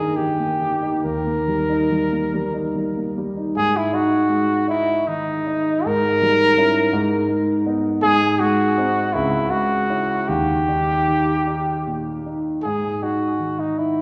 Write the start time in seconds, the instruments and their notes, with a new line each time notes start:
Already playing: grand piano G2 D#3 A#3 D#4, trumpet G#4
0.17 grand piano D#3, trumpet G4
0.40 grand piano A#3
0.61 grand piano D#3
0.82 grand piano D#4
1.03 grand piano D#2, trumpet A#4
1.27 grand piano A#3
1.48 grand piano G3
1.69 grand piano D#4
1.91 grand piano G3
2.12 grand piano A#3
2.34 grand piano G3
2.54 grand piano D#4
2.76 grand piano G3
2.97 grand piano A#3
3.18 grand piano G3
3.37 grand piano D#4
3.56 grand piano G#2, trumpet G#4
3.77 trumpet E4
3.93 grand piano D#4, trumpet F#4
4.29 grand piano G#3
4.68 grand piano D#4, trumpet E4
5.07 grand piano D#3, trumpet D#4
5.47 grand piano D#4
5.86 grand piano G#2, trumpet A#4
6.22 grand piano G3
6.57 grand piano C#4 E4
6.93 grand piano G#2
7.29 grand piano G#3
7.66 grand piano B3 D#4
8.03 grand piano G#2, trumpet G#4
8.40 grand piano G#3, trumpet F#4
8.78 grand piano C4 D#4
9.13 grand piano C#2, trumpet E4
9.50 grand piano G#3, trumpet F#4
9.90 grand piano C#4 E4
10.28 grand piano D#2, trumpet G4
10.69 grand piano D#4
11.08 grand piano D#3
11.47 grand piano D#4
11.87 grand piano A#2
12.26 grand piano D#4
12.63 grand piano G#2, trumpet G#4
13.02 grand piano D#4, trumpet F#4
13.39 grand piano D#3
13.59 trumpet D#4
13.78 grand piano D#4, trumpet E4